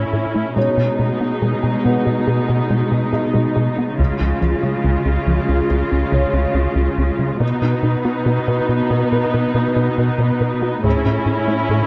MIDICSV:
0, 0, Header, 1, 7, 480
1, 0, Start_track
1, 0, Tempo, 857143
1, 315, Time_signature, 4, 2, 24, 8
1, 6646, End_track
2, 0, Start_track
2, 0, Title_t, "Felt piano"
2, 0, Program_c, 0, 0
2, 0, Control_c, 0, 64, 127
2, 323, Note_on_c, 0, 73, 39
2, 325, Control_c, 0, 64, 0
2, 327, Note_on_c, 0, 61, 26
2, 432, Control_c, 0, 64, 127
2, 1036, Note_on_c, 0, 59, 28
2, 1041, Note_on_c, 0, 71, 35
2, 1737, Note_off_c, 0, 73, 0
2, 1739, Note_off_c, 0, 61, 0
2, 1756, Note_on_c, 0, 63, 30
2, 1758, Note_on_c, 0, 75, 29
2, 2246, Control_c, 0, 64, 0
2, 2331, Control_c, 0, 64, 127
2, 2454, Note_off_c, 0, 59, 0
2, 2456, Note_off_c, 0, 71, 0
2, 3174, Note_off_c, 0, 63, 0
2, 3174, Note_off_c, 0, 75, 0
2, 3441, Note_on_c, 0, 73, 45
2, 4167, Control_c, 0, 64, 0
2, 4257, Control_c, 0, 64, 127
2, 4856, Note_off_c, 0, 73, 0
2, 5126, Note_on_c, 0, 71, 44
2, 6069, Note_on_c, 0, 68, 42
2, 6087, Control_c, 0, 64, 0
2, 6176, Control_c, 0, 64, 127
2, 6538, Note_off_c, 0, 71, 0
2, 6646, Note_off_c, 0, 68, 0
2, 6646, End_track
3, 0, Start_track
3, 0, Title_t, "Viola section"
3, 0, Program_c, 1, 48
3, 0, Note_on_c, 1, 61, 41
3, 0, Note_on_c, 1, 64, 38
3, 295, Note_off_c, 1, 61, 0
3, 295, Note_off_c, 1, 64, 0
3, 315, Note_on_c, 1, 63, 45
3, 316, Note_on_c, 1, 56, 45
3, 2213, Note_off_c, 1, 56, 0
3, 2213, Note_off_c, 1, 63, 0
3, 2238, Note_on_c, 1, 65, 47
3, 2239, Note_on_c, 1, 56, 44
3, 4135, Note_off_c, 1, 56, 0
3, 4135, Note_off_c, 1, 65, 0
3, 4156, Note_on_c, 1, 63, 51
3, 4160, Note_on_c, 1, 59, 49
3, 6053, Note_off_c, 1, 63, 0
3, 6056, Note_off_c, 1, 59, 0
3, 6079, Note_on_c, 1, 61, 54
3, 6079, Note_on_c, 1, 64, 52
3, 6646, Note_off_c, 1, 61, 0
3, 6646, Note_off_c, 1, 64, 0
3, 6646, End_track
4, 0, Start_track
4, 0, Title_t, "Synth arpeggio sound"
4, 0, Program_c, 2, 84
4, 72, Note_on_c, 2, 69, 45
4, 145, Note_off_c, 2, 69, 0
4, 192, Note_on_c, 2, 64, 53
4, 265, Note_off_c, 2, 64, 0
4, 314, Note_on_c, 2, 56, 68
4, 386, Note_off_c, 2, 56, 0
4, 431, Note_on_c, 2, 59, 46
4, 505, Note_off_c, 2, 59, 0
4, 552, Note_on_c, 2, 59, 49
4, 625, Note_off_c, 2, 59, 0
4, 672, Note_on_c, 2, 63, 51
4, 745, Note_off_c, 2, 63, 0
4, 794, Note_on_c, 2, 56, 72
4, 867, Note_off_c, 2, 56, 0
4, 912, Note_on_c, 2, 68, 46
4, 985, Note_off_c, 2, 68, 0
4, 1033, Note_on_c, 2, 59, 49
4, 1106, Note_off_c, 2, 59, 0
4, 1152, Note_on_c, 2, 56, 65
4, 1225, Note_off_c, 2, 56, 0
4, 1274, Note_on_c, 2, 68, 50
4, 1346, Note_off_c, 2, 68, 0
4, 1392, Note_on_c, 2, 68, 44
4, 1465, Note_off_c, 2, 68, 0
4, 1514, Note_on_c, 2, 56, 73
4, 1586, Note_off_c, 2, 56, 0
4, 1635, Note_on_c, 2, 68, 43
4, 1707, Note_off_c, 2, 68, 0
4, 1752, Note_on_c, 2, 68, 48
4, 1825, Note_off_c, 2, 68, 0
4, 1870, Note_on_c, 2, 56, 71
4, 1943, Note_off_c, 2, 56, 0
4, 1993, Note_on_c, 2, 68, 48
4, 2066, Note_off_c, 2, 68, 0
4, 2109, Note_on_c, 2, 63, 49
4, 2183, Note_off_c, 2, 63, 0
4, 2231, Note_on_c, 2, 49, 68
4, 2305, Note_off_c, 2, 49, 0
4, 2348, Note_on_c, 2, 53, 53
4, 2423, Note_off_c, 2, 53, 0
4, 2472, Note_on_c, 2, 53, 52
4, 2545, Note_off_c, 2, 53, 0
4, 2592, Note_on_c, 2, 56, 52
4, 2665, Note_off_c, 2, 56, 0
4, 2713, Note_on_c, 2, 49, 72
4, 2785, Note_off_c, 2, 49, 0
4, 2832, Note_on_c, 2, 61, 50
4, 2905, Note_off_c, 2, 61, 0
4, 2955, Note_on_c, 2, 53, 52
4, 3027, Note_off_c, 2, 53, 0
4, 3073, Note_on_c, 2, 49, 68
4, 3146, Note_off_c, 2, 49, 0
4, 3194, Note_on_c, 2, 61, 47
4, 3267, Note_off_c, 2, 61, 0
4, 3313, Note_on_c, 2, 61, 47
4, 3385, Note_off_c, 2, 61, 0
4, 3429, Note_on_c, 2, 49, 71
4, 3503, Note_off_c, 2, 49, 0
4, 3551, Note_on_c, 2, 61, 47
4, 3624, Note_off_c, 2, 61, 0
4, 3671, Note_on_c, 2, 61, 55
4, 3744, Note_off_c, 2, 61, 0
4, 3789, Note_on_c, 2, 49, 68
4, 3863, Note_off_c, 2, 49, 0
4, 3913, Note_on_c, 2, 61, 47
4, 3986, Note_off_c, 2, 61, 0
4, 4033, Note_on_c, 2, 56, 52
4, 4106, Note_off_c, 2, 56, 0
4, 4152, Note_on_c, 2, 59, 73
4, 4225, Note_off_c, 2, 59, 0
4, 4271, Note_on_c, 2, 63, 50
4, 4344, Note_off_c, 2, 63, 0
4, 4388, Note_on_c, 2, 63, 47
4, 4462, Note_off_c, 2, 63, 0
4, 4508, Note_on_c, 2, 66, 53
4, 4583, Note_off_c, 2, 66, 0
4, 4629, Note_on_c, 2, 59, 72
4, 4703, Note_off_c, 2, 59, 0
4, 4751, Note_on_c, 2, 71, 51
4, 4824, Note_off_c, 2, 71, 0
4, 4869, Note_on_c, 2, 63, 51
4, 4943, Note_off_c, 2, 63, 0
4, 4990, Note_on_c, 2, 59, 73
4, 5064, Note_off_c, 2, 59, 0
4, 5109, Note_on_c, 2, 71, 50
4, 5183, Note_off_c, 2, 71, 0
4, 5230, Note_on_c, 2, 71, 48
4, 5304, Note_off_c, 2, 71, 0
4, 5352, Note_on_c, 2, 59, 70
4, 5425, Note_off_c, 2, 59, 0
4, 5471, Note_on_c, 2, 71, 45
4, 5544, Note_off_c, 2, 71, 0
4, 5595, Note_on_c, 2, 71, 56
4, 5667, Note_off_c, 2, 71, 0
4, 5713, Note_on_c, 2, 59, 69
4, 5786, Note_off_c, 2, 59, 0
4, 5832, Note_on_c, 2, 71, 52
4, 5905, Note_off_c, 2, 71, 0
4, 5951, Note_on_c, 2, 66, 49
4, 6024, Note_off_c, 2, 66, 0
4, 6075, Note_on_c, 2, 57, 71
4, 6147, Note_off_c, 2, 57, 0
4, 6194, Note_on_c, 2, 61, 51
4, 6266, Note_off_c, 2, 61, 0
4, 6312, Note_on_c, 2, 61, 51
4, 6385, Note_off_c, 2, 61, 0
4, 6434, Note_on_c, 2, 64, 52
4, 6507, Note_off_c, 2, 64, 0
4, 6555, Note_on_c, 2, 57, 72
4, 6627, Note_off_c, 2, 57, 0
4, 6646, End_track
5, 0, Start_track
5, 0, Title_t, "Analog synth bass"
5, 0, Program_c, 3, 38
5, 73, Note_on_c, 3, 45, 45
5, 145, Note_off_c, 3, 45, 0
5, 198, Note_on_c, 3, 57, 53
5, 269, Note_off_c, 3, 57, 0
5, 317, Note_on_c, 3, 47, 70
5, 389, Note_off_c, 3, 47, 0
5, 433, Note_on_c, 3, 47, 50
5, 506, Note_off_c, 3, 47, 0
5, 556, Note_on_c, 3, 47, 52
5, 628, Note_off_c, 3, 47, 0
5, 675, Note_on_c, 3, 59, 48
5, 747, Note_off_c, 3, 59, 0
5, 795, Note_on_c, 3, 47, 67
5, 867, Note_off_c, 3, 47, 0
5, 916, Note_on_c, 3, 47, 48
5, 988, Note_off_c, 3, 47, 0
5, 1039, Note_on_c, 3, 47, 51
5, 1110, Note_off_c, 3, 47, 0
5, 1157, Note_on_c, 3, 47, 62
5, 1229, Note_off_c, 3, 47, 0
5, 1273, Note_on_c, 3, 47, 51
5, 1346, Note_off_c, 3, 47, 0
5, 1397, Note_on_c, 3, 47, 50
5, 1468, Note_off_c, 3, 47, 0
5, 1514, Note_on_c, 3, 47, 68
5, 1587, Note_off_c, 3, 47, 0
5, 1634, Note_on_c, 3, 47, 50
5, 1706, Note_off_c, 3, 47, 0
5, 1754, Note_on_c, 3, 47, 47
5, 1826, Note_off_c, 3, 47, 0
5, 1876, Note_on_c, 3, 47, 67
5, 1948, Note_off_c, 3, 47, 0
5, 1997, Note_on_c, 3, 47, 47
5, 2069, Note_off_c, 3, 47, 0
5, 2120, Note_on_c, 3, 59, 51
5, 2191, Note_off_c, 3, 59, 0
5, 2242, Note_on_c, 3, 37, 68
5, 2312, Note_off_c, 3, 37, 0
5, 2358, Note_on_c, 3, 37, 45
5, 2429, Note_off_c, 3, 37, 0
5, 2478, Note_on_c, 3, 37, 54
5, 2549, Note_off_c, 3, 37, 0
5, 2595, Note_on_c, 3, 49, 52
5, 2667, Note_off_c, 3, 49, 0
5, 2715, Note_on_c, 3, 37, 63
5, 2787, Note_off_c, 3, 37, 0
5, 2832, Note_on_c, 3, 37, 51
5, 2905, Note_off_c, 3, 37, 0
5, 2951, Note_on_c, 3, 37, 52
5, 3024, Note_off_c, 3, 37, 0
5, 3074, Note_on_c, 3, 37, 66
5, 3146, Note_off_c, 3, 37, 0
5, 3196, Note_on_c, 3, 37, 51
5, 3268, Note_off_c, 3, 37, 0
5, 3316, Note_on_c, 3, 37, 48
5, 3388, Note_off_c, 3, 37, 0
5, 3431, Note_on_c, 3, 37, 71
5, 3504, Note_off_c, 3, 37, 0
5, 3547, Note_on_c, 3, 37, 51
5, 3622, Note_off_c, 3, 37, 0
5, 3665, Note_on_c, 3, 37, 50
5, 3740, Note_off_c, 3, 37, 0
5, 3784, Note_on_c, 3, 37, 72
5, 3859, Note_off_c, 3, 37, 0
5, 3909, Note_on_c, 3, 37, 50
5, 3983, Note_off_c, 3, 37, 0
5, 4027, Note_on_c, 3, 49, 51
5, 4101, Note_off_c, 3, 49, 0
5, 4145, Note_on_c, 3, 47, 70
5, 4220, Note_off_c, 3, 47, 0
5, 4266, Note_on_c, 3, 47, 50
5, 4341, Note_off_c, 3, 47, 0
5, 4384, Note_on_c, 3, 47, 58
5, 4460, Note_off_c, 3, 47, 0
5, 4508, Note_on_c, 3, 59, 52
5, 4582, Note_off_c, 3, 59, 0
5, 4625, Note_on_c, 3, 47, 65
5, 4700, Note_off_c, 3, 47, 0
5, 4750, Note_on_c, 3, 47, 53
5, 4823, Note_off_c, 3, 47, 0
5, 4868, Note_on_c, 3, 47, 53
5, 4942, Note_off_c, 3, 47, 0
5, 4989, Note_on_c, 3, 47, 65
5, 5063, Note_off_c, 3, 47, 0
5, 5110, Note_on_c, 3, 47, 53
5, 5184, Note_off_c, 3, 47, 0
5, 5232, Note_on_c, 3, 47, 51
5, 5305, Note_off_c, 3, 47, 0
5, 5346, Note_on_c, 3, 47, 75
5, 5421, Note_off_c, 3, 47, 0
5, 5467, Note_on_c, 3, 47, 46
5, 5541, Note_off_c, 3, 47, 0
5, 5589, Note_on_c, 3, 47, 50
5, 5663, Note_off_c, 3, 47, 0
5, 5704, Note_on_c, 3, 47, 67
5, 5779, Note_off_c, 3, 47, 0
5, 5828, Note_on_c, 3, 47, 48
5, 5902, Note_off_c, 3, 47, 0
5, 5948, Note_on_c, 3, 59, 50
5, 6022, Note_off_c, 3, 59, 0
5, 6070, Note_on_c, 3, 45, 72
5, 6144, Note_off_c, 3, 45, 0
5, 6192, Note_on_c, 3, 45, 50
5, 6265, Note_off_c, 3, 45, 0
5, 6304, Note_on_c, 3, 45, 52
5, 6380, Note_off_c, 3, 45, 0
5, 6426, Note_on_c, 3, 57, 55
5, 6501, Note_off_c, 3, 57, 0
5, 6547, Note_on_c, 3, 45, 67
5, 6622, Note_off_c, 3, 45, 0
5, 6646, End_track
6, 0, Start_track
6, 0, Title_t, "Cello section"
6, 0, Program_c, 4, 48
6, 0, Note_on_c, 4, 45, 39
6, 314, Note_on_c, 4, 47, 47
6, 318, Note_off_c, 4, 45, 0
6, 2213, Note_off_c, 4, 47, 0
6, 2236, Note_on_c, 4, 49, 44
6, 4134, Note_off_c, 4, 49, 0
6, 4156, Note_on_c, 4, 47, 49
6, 6053, Note_off_c, 4, 47, 0
6, 6075, Note_on_c, 4, 45, 50
6, 6646, Note_off_c, 4, 45, 0
6, 6646, End_track
7, 0, Start_track
7, 0, Title_t, "Taiko and cinematic ensemble drums"
7, 2233, Note_on_c, 9, 41, 48
7, 2289, Note_off_c, 9, 41, 0
7, 6074, Note_on_c, 9, 41, 52
7, 6130, Note_off_c, 9, 41, 0
7, 6646, End_track
0, 0, End_of_file